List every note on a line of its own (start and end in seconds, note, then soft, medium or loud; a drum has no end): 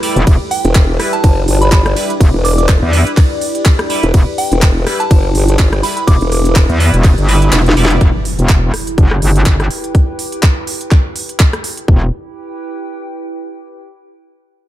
0.00 7.97 G3 medium
0.00 0.26 G3 medium
0.00 7.97 E4 medium
0.00 8.00 E4 medium
0.00 0.26 E4 medium
0.00 8.01 G4 medium
0.00 0.26 A4 medium
0.00 8.01 B4 medium
0.00 0.26 D5 loud
0.00 8.01 G5 medium
0.00 open hi-hat loud
0.16 0.25 E1 medium
0.16 closed hi-hat medium
0.27 0.38 E1 loud
0.27 8.00 D5 medium
0.27 kick loud
0.27 closed hi-hat medium
0.27 ride medium
0.51 0.71 G5 medium
0.51 open hi-hat loud
0.65 0.98 E1 loud
0.65 closed hi-hat medium
0.75 kick loud
0.75 clap loud
0.75 closed hi-hat medium
0.75 ride medium
1.00 1.15 G3 medium
1.00 1.15 E4 medium
1.00 1.15 B4 medium
1.00 cross-stick medium
1.00 open hi-hat loud
1.13 1.59 A5 medium
1.13 closed hi-hat soft
1.24 1.46 F#1 loud
1.24 kick loud
1.24 closed hi-hat medium
1.24 ride medium
1.48 1.95 G1 loud
1.48 open hi-hat loud
1.61 1.68 B5 medium
1.61 closed hi-hat medium
1.72 kick loud
1.72 clap loud
1.72 closed hi-hat medium
1.72 ride medium
1.86 cross-stick medium
1.86 closed hi-hat soft
1.96 2.12 G3 medium
1.96 2.12 E4 medium
1.96 2.12 B4 medium
1.96 open hi-hat loud
2.10 closed hi-hat medium
2.20 2.32 E1 loud
2.20 kick loud
2.20 closed hi-hat medium
2.20 ride medium
2.34 2.80 E1 loud
2.45 2.53 D6 medium
2.45 open hi-hat loud
2.58 2.65 D6 medium
2.58 closed hi-hat medium
2.69 kick loud
2.69 clap loud
2.69 closed hi-hat medium
2.69 ride medium
2.82 3.04 E2 loud
2.93 3.09 G3 medium
2.93 3.09 E4 medium
2.93 3.09 B4 medium
2.93 open hi-hat loud
3.07 closed hi-hat medium
3.17 kick loud
3.17 clap medium
3.17 closed hi-hat medium
3.17 ride medium
3.41 open hi-hat loud
3.55 closed hi-hat medium
3.65 kick loud
3.65 clap loud
3.65 closed hi-hat medium
3.65 ride medium
3.79 cross-stick medium
3.79 closed hi-hat soft
3.90 4.05 G3 medium
3.90 4.05 E4 medium
3.90 4.05 B4 medium
3.90 open hi-hat loud
4.03 4.12 E1 loud
4.03 closed hi-hat medium
4.14 4.25 E1 loud
4.14 kick loud
4.14 closed hi-hat medium
4.14 ride medium
4.38 4.58 G5 medium
4.38 open hi-hat loud
4.52 4.85 E1 loud
4.52 closed hi-hat medium
4.62 kick loud
4.62 clap loud
4.62 closed hi-hat medium
4.62 ride medium
4.87 5.02 G3 medium
4.87 5.02 E4 medium
4.87 5.02 B4 medium
4.87 cross-stick medium
4.87 open hi-hat loud
5.00 5.46 A5 medium
5.00 closed hi-hat medium
5.11 5.33 F#1 loud
5.11 kick loud
5.11 closed hi-hat medium
5.11 ride medium
5.35 5.82 G1 loud
5.35 open hi-hat loud
5.48 closed hi-hat medium
5.59 kick loud
5.59 clap loud
5.59 closed hi-hat medium
5.59 ride medium
5.73 cross-stick medium
5.73 closed hi-hat soft
5.83 5.99 G3 medium
5.83 5.99 E4 medium
5.83 5.99 B4 medium
5.83 5.92 B5 medium
5.83 open hi-hat loud
5.97 6.04 B5 medium
5.97 closed hi-hat medium
6.07 6.19 E1 loud
6.07 6.56 D6 medium
6.07 kick loud
6.07 closed hi-hat medium
6.07 ride medium
6.21 6.67 E1 loud
6.21 closed hi-hat soft
6.32 open hi-hat loud
6.45 closed hi-hat medium
6.56 kick loud
6.56 clap loud
6.56 closed hi-hat medium
6.56 ride medium
6.69 6.91 E2 loud
6.69 closed hi-hat soft
6.80 6.96 G3 medium
6.80 6.96 E4 medium
6.80 6.96 B4 medium
6.80 open hi-hat loud
6.93 7.16 E1 loud
6.93 closed hi-hat medium
7.04 kick loud
7.04 clap medium
7.04 closed hi-hat medium
7.04 ride medium
7.18 7.51 G1 loud
7.18 closed hi-hat soft
7.29 7.52 G3 medium
7.29 7.52 E4 medium
7.29 7.52 B4 medium
7.29 open hi-hat loud
7.42 closed hi-hat medium
7.52 7.75 E1 loud
7.52 snare medium
7.52 clap loud
7.52 closed hi-hat medium
7.52 ride medium
7.66 snare medium
7.66 closed hi-hat soft
7.77 7.99 E1 loud
7.77 8.00 G3 loud
7.77 8.00 E4 medium
7.77 8.00 D5 loud
7.77 open hi-hat loud
7.85 snare medium
7.90 closed hi-hat medium
8.01 8.12 E1 medium
8.01 11.87 E4 medium
8.01 kick loud
8.01 closed hi-hat medium
8.01 impact medium
8.25 open hi-hat loud
8.39 8.72 E1 loud
8.39 closed hi-hat medium
8.49 11.88 G4 medium
8.49 kick loud
8.49 clap loud
8.49 closed hi-hat medium
8.74 11.88 G5 medium
8.74 cross-stick medium
8.74 open hi-hat loud
8.81 11.88 B4 medium
8.87 closed hi-hat medium
8.98 9.20 F#1 medium
8.98 kick loud
8.98 closed hi-hat medium
9.11 cross-stick medium
9.22 9.69 G1 loud
9.22 open hi-hat loud
9.36 closed hi-hat medium
9.46 kick loud
9.46 clap loud
9.46 closed hi-hat medium
9.60 cross-stick medium
9.60 closed hi-hat soft
9.71 open hi-hat loud
9.84 closed hi-hat medium
9.95 kick loud
9.95 closed hi-hat medium
10.19 open hi-hat loud
10.32 closed hi-hat medium
10.43 kick loud
10.43 clap loud
10.43 closed hi-hat medium
10.67 open hi-hat loud
10.81 closed hi-hat medium
10.91 kick loud
10.91 clap medium
10.91 closed hi-hat medium
11.16 open hi-hat loud
11.29 closed hi-hat medium
11.40 kick loud
11.40 clap loud
11.40 closed hi-hat medium
11.53 cross-stick medium
11.53 closed hi-hat soft
11.64 open hi-hat loud
11.77 closed hi-hat medium
11.88 12.11 E1 loud
11.88 13.78 E4 medium
11.88 kick loud
11.96 13.78 G4 medium
12.04 13.78 B4 medium
12.10 13.78 G5 medium